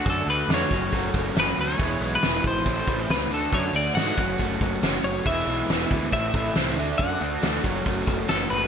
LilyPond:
<<
  \new Staff \with { instrumentName = "Clean electric guitar" } { \time 4/4 \key fis \minor \tempo 4 = 138 a'8 b'8 cis''2 b'8 cis''8~ | cis''8. b'8. c''4. b'8 a'8 | cis''8 d''8 fis''2~ fis''8 cis''8 | e''2 e''2 |
fis''2. a'8 b'8 | }
  \new Staff \with { instrumentName = "Overdriven electric guitar" } { \time 4/4 \key fis \minor <d a d' fis'>4. <fis a cis' fis'>2~ <fis a cis' fis'>8 | <e gis b e'>2 <a, e a c' e'>4. <d a d' fis'>8~ | <d a d' fis'>4. <fis a cis' fis'>2~ <fis a cis' fis'>8 | <e gis b e'>2 <a, e a c' e'>4. <d a d' fis'>8~ |
<d a d' fis'>4. <fis a cis' fis'>2~ <fis a cis' fis'>8 | }
  \new Staff \with { instrumentName = "Overdriven electric guitar" } { \clef bass \time 4/4 \key fis \minor d8 a8 d'8 fis8 a8 fis8 cis'8 fis'8 | e8 gis8 b8 e8 a,8 e8 c'8 d8 | d8 a8 d'8 fis8 a8 fis8 cis'8 fis'8 | e8 gis8 b8 e8 a,8 e8 c'8 d8 |
d8 a8 d'8 fis8 a8 fis8 cis'8 fis'8 | }
  \new Staff \with { instrumentName = "Picked electric bass" } { \clef bass \time 4/4 \key fis \minor fis,8 d,8 f,8 fis,,8 fis,,8 fis,,8 fis,,8 d,8 | e,,8 b,,8 e,,8 gis,,8 a,,8 a,,8 cis,8 d,8 | fis,8 d,8 gis,8 fis,,8 fis,,8 fis,,8 fis,,8 fis,,8 | e,,8 b,,8 e,,8 d,8 a,,8 a,,8 c,8 d,8 |
fis,8 d,8 d,8 fis,,8 fis,,8 fis,,8 fis,,8 fis,,8 | }
  \new DrumStaff \with { instrumentName = "Drums" } \drummode { \time 4/4 <hho bd>4 <hho sn>8 bd8 <hho bd>8 bd8 <hho sn>4 | <hho bd>4 <hho sn>8 bd8 <hho bd>8 bd8 <hho sn>4 | <hho bd>4 <hho sn>8 bd8 <hho bd>8 bd8 <hho sn>4 | <hho bd>4 <hho sn>8 bd8 <hho bd>8 bd8 <hho sn>4 |
<hho bd>4 <hho sn>8 bd8 <hho bd>8 bd8 <hho sn>4 | }
>>